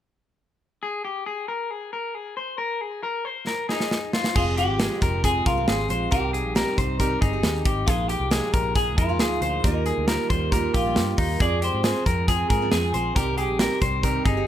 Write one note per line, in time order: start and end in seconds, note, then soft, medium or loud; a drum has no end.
0.83 1.04 G#4 medium
1.05 1.26 G4 medium
1.26 1.48 G#4 medium
1.48 1.71 A#4 medium
1.71 1.93 G#4 medium
1.93 2.15 A#4 medium
2.15 2.36 G#4 medium
2.37 2.58 C5 medium
2.58 2.81 A#4 medium
2.81 3.03 G#4 medium
3.03 3.25 A#4 medium
3.25 3.47 C5 medium
3.47 3.68 A#4 medium
3.47 snare soft
3.69 4.32 D#4 medium
3.69 4.11 G#4 medium
3.69 snare medium
3.80 snare medium
3.91 snare medium
4.13 4.36 F4 medium
4.13 snare medium
4.24 snare medium
4.35 4.68 F1 loud
4.35 4.78 F2 medium
4.35 4.78 C3 medium
4.35 4.79 F3 medium
4.35 4.79 G#3 medium
4.35 4.72 C4 medium
4.35 4.80 C4 medium
4.35 4.72 F4 medium
4.35 4.42 F4 medium
4.35 4.57 G#4 loud
4.35 4.72 G#4 medium
4.35 kick loud
4.35 crash medium
4.57 4.80 G4 medium
4.57 5.24 G4 medium
4.57 closed hi-hat medium
4.68 4.87 G#1 medium
4.79 5.01 F2 medium
4.79 5.00 C3 medium
4.79 5.00 F3 medium
4.79 5.01 G#3 medium
4.79 5.17 G#3 medium
4.79 5.17 C4 medium
4.79 5.02 C4 medium
4.79 5.17 F4 medium
4.79 5.02 G#4 medium
4.79 snare loud
4.79 closed hi-hat medium
5.01 5.39 F1 medium
5.01 5.23 C3 medium
5.01 5.23 F3 medium
5.01 5.23 G#3 medium
5.01 5.24 C4 medium
5.01 5.24 A#4 medium
5.01 kick medium
5.01 closed hi-hat medium
5.24 5.57 F2 medium
5.24 5.57 C3 medium
5.24 5.56 F3 medium
5.24 5.56 G#3 medium
5.24 5.60 C4 medium
5.24 5.55 C4 medium
5.24 5.60 F4 medium
5.24 5.61 G#4 medium
5.24 5.46 G#4 medium
5.24 5.46 G#4 loud
5.24 kick medium
5.24 closed hi-hat medium
5.46 5.65 C2 medium
5.46 6.11 F4 loud
5.46 5.68 A#4 medium
5.46 kick loud
5.46 closed hi-hat medium
5.57 5.90 F2 medium
5.57 5.87 C3 medium
5.57 5.88 F3 medium
5.57 5.89 G#3 medium
5.57 5.89 C4 medium
5.68 5.87 G#1 medium
5.68 6.04 C4 medium
5.68 6.05 F4 medium
5.68 6.04 G#4 medium
5.68 5.90 G#4 medium
5.68 snare loud
5.68 closed hi-hat medium
5.88 6.09 A#1 medium
5.88 6.09 C3 medium
5.88 6.11 F3 medium
5.88 6.11 G#3 medium
5.88 6.10 C4 medium
5.88 6.11 C5 medium
5.88 closed hi-hat medium
6.11 6.44 C2 medium
6.11 6.54 C3 medium
6.11 6.54 G3 medium
6.11 6.55 C4 medium
6.11 6.49 C4 medium
6.11 6.56 D#4 medium
6.11 6.49 D#4 medium
6.11 6.96 G4 medium
6.11 6.49 G4 medium
6.11 6.33 A#4 loud
6.11 kick loud
6.11 closed hi-hat medium
6.33 6.56 G#4 medium
6.33 closed hi-hat medium
6.44 6.63 A#1 medium
6.55 6.75 C3 medium
6.55 6.77 G3 medium
6.55 6.77 C4 medium
6.55 6.93 C4 medium
6.55 6.78 D#4 medium
6.55 6.93 D#4 medium
6.55 6.93 G4 medium
6.55 6.78 A#4 medium
6.55 snare loud
6.55 closed hi-hat medium
6.77 7.15 C2 medium
6.77 6.98 C3 medium
6.77 6.99 G3 medium
6.77 6.99 C4 medium
6.77 7.00 D#4 medium
6.77 6.99 C5 medium
6.77 kick medium
6.77 closed hi-hat medium
6.99 7.33 C3 medium
6.99 7.33 G3 medium
6.99 7.32 C4 medium
6.99 7.37 C4 medium
6.99 7.37 D#4 medium
6.99 7.32 D#4 medium
6.99 7.37 G4 medium
6.99 7.21 A#4 medium
6.99 kick medium
6.99 closed hi-hat medium
7.21 7.44 G1 medium
7.21 7.89 D#4 medium
7.21 7.63 G#4 medium
7.21 kick loud
7.21 closed hi-hat medium
7.33 7.63 C3 medium
7.33 7.65 C4 medium
7.33 7.66 D#4 medium
7.43 7.62 D#2 medium
7.43 7.81 C4 medium
7.43 7.81 D#4 medium
7.43 7.81 G4 medium
7.43 snare loud
7.43 closed hi-hat medium
7.64 7.84 G#1 medium
7.64 7.86 C3 medium
7.64 7.87 G3 medium
7.64 7.87 C4 medium
7.64 7.87 D#4 medium
7.64 7.87 G4 medium
7.64 kick loud
7.64 closed hi-hat medium
7.86 8.16 A#1 loud
7.86 8.29 A#2 medium
7.86 8.31 F3 medium
7.86 8.30 G#3 medium
7.86 8.24 A#3 medium
7.86 8.24 D#4 medium
7.86 8.32 D#4 medium
7.86 8.08 F4 medium
7.86 8.10 G#4 loud
7.86 8.24 G#4 medium
7.86 kick loud
7.86 closed hi-hat medium
8.08 8.71 G4 medium
8.08 8.31 G4 medium
8.08 closed hi-hat medium
8.20 8.39 C2 medium
8.31 8.52 A#2 medium
8.31 8.52 F3 medium
8.31 8.68 G#3 medium
8.31 8.53 G#3 medium
8.31 8.68 A#3 medium
8.31 8.68 D#4 medium
8.31 8.54 D#4 medium
8.31 8.53 G#4 medium
8.31 snare loud
8.31 closed hi-hat medium
8.53 8.98 A#1 loud
8.53 8.74 A#2 medium
8.53 8.75 F3 medium
8.53 8.75 G#3 medium
8.53 8.75 D#4 medium
8.53 8.75 A#4 medium
8.53 kick medium
8.53 closed hi-hat medium
8.75 9.08 A#2 medium
8.75 9.09 F3 medium
8.75 9.08 G#3 medium
8.75 9.12 A#3 medium
8.75 9.12 D#4 medium
8.75 9.07 D#4 medium
8.75 9.12 G#4 medium
8.75 8.97 G#4 loud
8.75 8.98 G#4 medium
8.75 kick medium
8.75 closed hi-hat medium
8.98 9.20 F2 medium
8.98 9.66 F4 medium
8.98 9.20 A#4 medium
8.98 kick medium
8.98 closed hi-hat medium
9.09 9.41 A#2 medium
9.09 9.41 F3 medium
9.09 9.42 G#3 medium
9.09 9.42 D#4 medium
9.19 9.39 D2 medium
9.19 9.56 A#3 medium
9.19 9.56 D#4 medium
9.19 9.56 G#4 medium
9.19 9.42 G#4 medium
9.19 snare loud
9.19 closed hi-hat medium
9.41 9.60 D2 medium
9.41 9.64 A#2 medium
9.41 9.64 F3 medium
9.41 9.65 G#3 medium
9.41 9.65 D#4 medium
9.41 9.64 C5 medium
9.41 closed hi-hat medium
9.64 9.92 D#2 loud
9.64 10.07 D#3 medium
9.64 10.08 G3 medium
9.64 10.08 A#3 medium
9.64 10.00 D#4 medium
9.64 10.48 D#4 medium
9.64 10.01 F4 medium
9.64 10.10 F4 medium
9.64 10.00 G4 medium
9.64 9.86 A#4 medium
9.64 kick loud
9.64 closed hi-hat medium
9.86 10.07 G#4 medium
9.86 closed hi-hat medium
9.98 10.16 D2 medium
10.07 10.29 D#3 medium
10.07 10.30 G3 medium
10.07 10.30 A#3 medium
10.07 10.44 D#4 medium
10.07 10.44 F4 medium
10.07 10.31 F4 medium
10.07 10.44 G4 medium
10.07 10.29 A#4 medium
10.07 snare loud
10.07 closed hi-hat medium
10.30 10.67 D#2 medium
10.30 10.51 D#3 medium
10.30 10.52 G3 medium
10.30 10.52 A#3 medium
10.30 10.53 F4 medium
10.30 10.52 C5 medium
10.30 kick medium
10.30 closed hi-hat medium
10.52 10.85 D#3 medium
10.52 10.84 G3 medium
10.52 10.84 A#3 medium
10.52 10.88 D#4 medium
10.52 10.89 F4 medium
10.52 10.84 F4 medium
10.52 10.88 G4 medium
10.52 10.73 A#4 medium
10.52 kick medium
10.52 closed hi-hat medium
10.74 10.98 A#1 medium
10.74 11.37 F4 medium
10.74 11.15 G4 medium
10.74 kick medium
10.74 closed hi-hat medium
10.85 11.16 D#3 medium
10.85 11.17 G3 medium
10.85 11.18 A#3 medium
10.85 11.18 F4 medium
10.96 11.15 G2 medium
10.96 11.33 D#4 medium
10.96 11.33 F4 medium
10.96 11.33 G4 medium
10.96 snare loud
10.96 closed hi-hat medium
11.17 11.37 D#2 medium
11.17 11.39 D#3 medium
11.17 11.40 G3 medium
11.17 11.40 A#3 medium
11.17 11.40 D#4 medium
11.17 11.40 F4 medium
11.17 kick medium
11.17 open hi-hat medium
11.39 11.68 F2 medium
11.39 11.82 F3 medium
11.39 11.83 G#3 medium
11.39 11.77 C4 medium
11.39 11.84 C4 medium
11.39 11.77 F4 medium
11.39 11.83 F4 medium
11.39 11.62 G#4 loud
11.39 11.77 G#4 medium
11.39 11.63 D5 medium
11.39 kick loud
11.39 closed hi-hat medium
11.62 11.84 G4 medium
11.62 12.04 C5 medium
11.62 closed hi-hat medium
11.74 11.92 G#2 medium
11.83 12.05 F3 medium
11.83 12.06 G#3 medium
11.83 12.21 C4 medium
11.83 12.06 C4 medium
11.83 12.21 F4 medium
11.83 12.06 F4 medium
11.83 12.21 G#4 medium
11.83 12.06 G#4 medium
11.83 snare loud
11.83 closed hi-hat medium
12.06 12.43 F2 medium
12.06 12.27 F3 medium
12.06 12.27 G#3 medium
12.06 12.28 C4 medium
12.06 12.28 F4 medium
12.06 12.28 A#4 medium
12.06 kick medium
12.06 closed hi-hat medium
12.28 12.61 F3 medium
12.28 12.61 G#3 medium
12.28 12.64 C4 medium
12.28 12.61 C4 medium
12.28 12.65 F4 medium
12.28 12.60 F4 medium
12.28 12.49 G#4 medium
12.28 12.70 G#4 loud
12.28 12.65 G#4 medium
12.28 kick medium
12.28 closed hi-hat medium
12.50 12.69 G#2 medium
12.50 12.71 A#4 medium
12.50 kick medium
12.50 closed hi-hat medium
12.61 12.92 F3 medium
12.61 12.93 G#3 medium
12.61 12.94 C4 medium
12.61 12.94 F4 medium
12.71 12.91 F2 medium
12.71 13.08 C4 medium
12.71 13.08 F4 medium
12.71 12.94 G#4 medium
12.71 13.16 G#4 medium
12.71 13.08 G#4 medium
12.71 snare loud
12.71 closed hi-hat medium
12.94 13.12 A#1 medium
12.94 13.16 F3 medium
12.94 13.16 G#3 medium
12.94 13.16 C4 medium
12.94 13.17 F4 medium
12.94 13.15 C5 medium
12.94 closed hi-hat medium
13.16 13.48 C2 loud
13.16 13.59 C3 medium
13.16 13.60 D#3 medium
13.16 13.59 G3 medium
13.16 13.53 C4 medium
13.16 13.60 C4 medium
13.16 13.53 D#4 medium
13.16 13.36 G4 loud
13.16 13.53 G4 medium
13.16 13.60 G4 medium
13.16 13.37 A#4 loud
13.16 kick loud
13.16 closed hi-hat medium
13.37 14.28 G4 loud
13.37 13.60 G#4 medium
13.37 closed hi-hat medium
13.48 13.67 A#1 medium
13.59 13.82 C3 medium
13.59 13.80 D#3 medium
13.59 13.80 G3 medium
13.59 13.96 C4 medium
13.59 13.81 C4 medium
13.59 13.96 D#4 medium
13.59 13.96 G4 medium
13.59 13.81 G4 medium
13.59 13.81 A#4 medium
13.59 snare loud
13.59 closed hi-hat medium
13.81 14.19 C2 medium
13.81 14.03 D#3 medium
13.81 14.03 G3 medium
13.81 14.04 C4 medium
13.81 14.04 G4 medium
13.81 14.03 C5 medium
13.81 kick medium
13.81 closed hi-hat medium
14.03 14.36 C3 medium
14.03 14.37 D#3 medium
14.03 14.37 G3 medium
14.03 14.40 C4 medium
14.03 14.36 C4 medium
14.03 14.40 D#4 medium
14.03 14.40 G4 medium
14.03 14.36 G4 loud
14.03 14.25 A#4 medium
14.03 kick medium
14.03 closed hi-hat medium
14.25 14.44 G1 medium
14.25 14.47 D#4 medium
14.25 14.47 G#4 medium
14.25 kick medium
14.25 closed hi-hat medium
14.37 14.47 C3 medium
14.37 14.47 D#3 medium
14.37 14.47 C4 medium
14.37 14.47 G4 medium